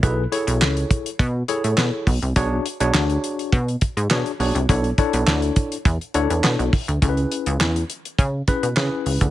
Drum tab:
HH |x-xx-xxxx-xx--ox|x-xx-xxxxxxx-xox|xxxx-xxxxxxx-xox|xxxx-xxxx-xx--ox|
CP |----x-------x---|----x-------x---|----x-------x---|----x-------x---|
SD |----o-------o---|----o-------o---|----o-------o---|----o-------o---|
BD |o-----o-o-----o-|o-------o-o-----|o-o---o-o-----o-|o-------o-o----o|